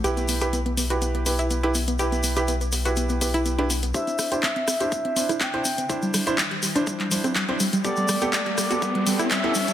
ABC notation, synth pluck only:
X:1
M:4/4
L:1/16
Q:1/4=123
K:Clyd
V:1 name="Synth pluck"
G B, B, G B, B, B, F B, B, B, E B, E B, B, | G B, B, G B, B, B, F B, B, B, E B, D B, B, | G C C G C C C G C C C E C E C C | E G, G, E G, G, G, D G, G, G, C G, C G, G, |
G G, G, G G, G, G, F G, G, G, E G, E G, G, |]